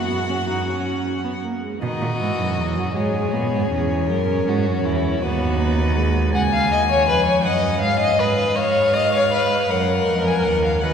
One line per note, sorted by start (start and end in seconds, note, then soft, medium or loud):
0.00 1.44 F#2 medium
0.00 1.40 F#4 medium
0.00 1.40 F#5 medium
0.09 0.17 B3 medium
0.28 0.36 C#4 medium
0.47 0.66 D#4 medium
0.67 1.23 C#4 medium
1.24 1.32 B3 medium
1.44 1.62 A#3 medium
1.63 1.81 G#3 medium
1.82 1.90 B2 medium
1.82 2.17 D#3 medium
1.82 2.97 F#4 medium
1.82 2.92 D#5 medium
2.01 2.09 A#2 medium
2.19 2.38 G#2 medium
2.19 2.59 E3 medium
2.39 2.59 F#2 medium
2.57 2.78 E2 medium
2.57 2.95 F#3 medium
2.77 2.95 F#2 medium
2.95 3.35 G#2 medium
2.95 3.35 G#3 medium
2.95 4.09 G#4 medium
2.95 5.24 C#5 medium
3.33 3.52 A#2 medium
3.33 3.70 B3 medium
3.53 3.71 G#2 medium
3.71 4.11 E2 medium
3.71 5.19 C#4 medium
4.09 4.47 F#2 medium
4.09 4.49 A#4 medium
4.47 4.68 G#2 medium
4.47 4.86 F#4 medium
4.66 4.84 F#2 medium
4.85 5.21 E2 medium
4.85 5.22 E4 medium
5.22 6.35 D#2 medium
5.22 5.61 B3 medium
5.22 6.32 F#4 medium
5.22 6.33 B4 medium
5.60 5.98 A#3 medium
5.96 6.33 G#3 medium
6.33 6.72 C#2 medium
6.33 6.42 F#5 loud
6.33 7.47 G#5 medium
6.53 6.71 F5 medium
6.71 7.09 D#2 medium
6.71 6.79 D#5 loud
6.90 7.08 C#5 loud
7.08 7.47 F2 medium
7.08 7.25 B4 loud
7.26 7.44 C#5 medium
7.45 7.85 F#2 medium
7.45 7.80 D#5 medium
7.45 7.82 F#5 medium
7.81 8.19 G#2 medium
7.81 7.99 F5 loud
7.81 8.19 F5 medium
7.99 8.21 D#5 loud
8.19 9.67 G#2 medium
8.19 8.58 B4 loud
8.19 8.59 D#5 medium
8.56 8.95 C#5 loud
8.56 9.72 F5 medium
8.94 9.12 D#5 loud
9.13 9.32 C#5 loud
9.33 9.71 B4 loud
9.70 10.07 F#2 medium
9.70 10.83 A#4 loud
9.70 10.25 F#5 medium
10.08 10.44 F2 medium
10.26 10.46 G#5 medium
10.44 10.82 D#2 medium
10.44 10.63 F#5 medium
10.63 10.81 F5 medium
10.82 10.91 D#3 medium
10.82 10.94 F#4 medium
10.82 10.94 B4 medium
10.82 10.94 F#5 medium